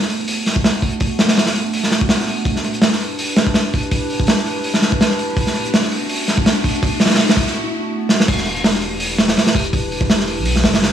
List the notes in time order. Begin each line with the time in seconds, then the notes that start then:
0.02 snare
0.10 A3 B3 D4 F#4, open hi-hat
0.28 open hi-hat
0.46 snare, open hi-hat
0.56 kick
0.64 snare, open hi-hat
0.82 kick, open hi-hat
0.92 closed hi-hat
1.00 kick, open hi-hat
1.19 snare, open hi-hat
1.28 snare, open hi-hat
1.37 snare, open hi-hat
1.46 snare, open hi-hat
1.55 A3 B3 D4 F#4, open hi-hat
1.73 open hi-hat
1.83 snare
1.91 snare, open hi-hat
2.01 kick
2.09 snare, open hi-hat
2.20 snare
2.27 open hi-hat
2.45 kick, open hi-hat, riser
2.56 snare
2.64 open hi-hat
2.74 closed hi-hat
2.82 snare, open hi-hat
2.92 snare
3.00 D4 E4 G4 B4, open hi-hat
3.19 open hi-hat
3.36 snare, open hi-hat
3.47 kick
3.54 snare, open hi-hat
3.74 kick, open hi-hat
3.83 closed hi-hat
3.91 kick, open hi-hat
4.10 open hi-hat
4.20 kick
4.27 snare, open hi-hat
4.37 snare
4.46 D4 E4 G4 B4, open hi-hat
4.64 open hi-hat
4.74 snare
4.82 snare, open hi-hat
4.92 kick
5.01 snare, open hi-hat
5.11 snare
5.19 open hi-hat
5.37 kick, open hi-hat
5.46 snare
5.56 open hi-hat
5.65 closed hi-hat
5.74 snare, open hi-hat
5.83 snare
5.91 A3 B3 D4 F#4, open hi-hat
6.09 open hi-hat
6.27 snare, open hi-hat
6.38 kick
6.46 snare, open hi-hat
6.64 kick, open hi-hat
6.75 closed hi-hat
6.83 kick, open hi-hat
7.00 snare, open hi-hat
7.05 snare, open hi-hat
7.10 snare, open hi-hat
7.14 snare, open hi-hat
7.18 snare, open hi-hat
7.29 snare, open hi-hat
7.37 kick, open hi-hat
7.47 snare
8.09 snare
8.20 snare
8.28 E1, kick, open hi-hat, crash
8.38 snare
8.45 open hi-hat
8.56 closed hi-hat
8.64 snare, open hi-hat
8.74 snare
8.82 open hi-hat
9.00 open hi-hat
9.18 snare, open hi-hat
9.28 snare, open hi-hat
9.37 snare, open hi-hat
9.47 snare, open hi-hat
9.55 E1, kick, open hi-hat
9.65 closed hi-hat
9.73 kick, open hi-hat
9.92 open hi-hat
10.01 kick
10.10 snare, open hi-hat
10.20 snare
10.28 open hi-hat
10.38 B1
10.45 open hi-hat
10.56 snare
10.64 F#1, snare, open hi-hat
10.74 snare, open hi-hat
10.82 snare, open hi-hat